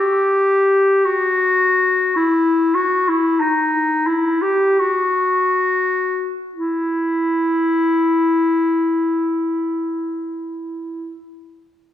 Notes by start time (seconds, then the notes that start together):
Already playing: G4
1.05 F#4
2.16 E4
2.75 F#4
3.09 E4
3.40 D#4
4.07 E4
4.42 G4
4.79 F#4
6.55 E4